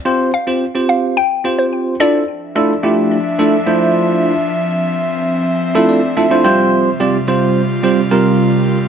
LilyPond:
<<
  \new Staff \with { instrumentName = "Synth pluck" } { \time 4/4 \key d \minor \tempo 4 = 108 r8 f''16 r8. f''8 g''16 r8 c''16 r8 d''16 r16 | r1 | r1 | r1 | }
  \new Staff \with { instrumentName = "Tine electric piano" } { \time 4/4 \key d \minor << { r1 | r1 | r2 r8 d''8 e''8 g''8 | r1 | } \\ { <c' f' g' c''>8 r16 <c' f' g' c''>16 r16 <c' f' g' c''>8. r8 <c' f' g' c''>4 <d' e' f' a'>8 | r8 <a d' e' f' a'>16 r16 <a d' e' f' g'>8 r8 <a d' e' f' a'>16 r16 <a d' e' f' c''>4~ <a d' e' f' c''>16 r16 | r2 r16 <a d' e' f' a'>8 r16 <a d' e' f' a'>16 <a d' e' f' c''>16 <g c' f' g' c''>8~ | <g c' f' g' c''>16 r16 <g c' f' g' d''>16 r16 <g c' f' g' c''>8 r8 <g c' f' g' c''>16 r16 <g c' f' g' bes'>4~ <g c' f' g' bes'>16 r16 | } >> }
  \new Staff \with { instrumentName = "Analog synth pad" } { \time 4/4 \key d \minor << { r1 | <f e''>1~ | <f e''>2.~ <f e''>8 <c f'>8~ | <c f'>1 | } \\ { r1 | d'1 | c'2.~ c'8 g8~ | g1 | } >> }
>>